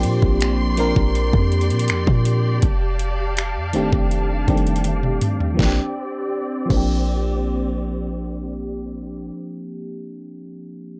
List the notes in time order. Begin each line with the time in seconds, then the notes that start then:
Already playing: F3 A#3 C4 D4 G4 D5 C6
0.03 A#2, closed hi-hat
0.22 A#1, kick
0.41 finger snap, closed hi-hat
0.77 F3 A#3 C4 D4 A#4, closed hi-hat
0.96 A#1, kick
1.15 closed hi-hat
1.33 F2, kick
1.52 closed hi-hat
1.61 closed hi-hat
1.70 A#2, closed hi-hat
1.79 closed hi-hat
1.88 F2, finger snap, closed hi-hat
2.07 A#2, kick
2.25 closed hi-hat
2.62 F1 F5 A5, kick, closed hi-hat
2.99 closed hi-hat
3.37 finger snap, closed hi-hat
3.56 F2
3.73 F1 D#3 A3 C4 D4 G4, closed hi-hat
3.93 F1, kick
4.11 closed hi-hat
4.47 F1 D#3 G3 C4 D4 G4, kick, closed hi-hat
4.54 A3, closed hi-hat
4.67 closed hi-hat
4.76 closed hi-hat
4.84 closed hi-hat, high tom
5.03 mid tom
5.21 closed hi-hat, mid tom
5.40 floor tom
5.54 F3 A#3
5.59 A#1 C4 D4 G4 D5, kick, snare
5.65 G4
6.66 F3 A#3
6.70 A#1 C4 D4, kick, crash
6.77 G4